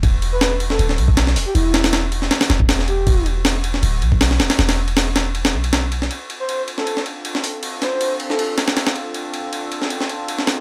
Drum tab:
RD |x-x-x-x-x-x-x---|x-xxx-x-xxx-x-x-|x-x-x-x-x-x-x-xx|xx-xx-x-xx-xx-x-|
HH |--------------o-|----------------|----------------|----------------|
SD |----o--o-o--oo--|--ooo--oooo-oo--|----o--o----oooo|oo--o-o--o--o--o|
BD |o----------o----|-----------o----|o----------o----|----------------|

RD |x-x-x-x-x-x-x---|x-x-x-x-x-xxxxx-|x-x-x-x-x-x-x-x-|
HH |--------------o-|----------------|----------------|
SD |-------o-o---o--|--o----o--oooo--|-------o-o---oo-|
BD |----------------|----------------|----------------|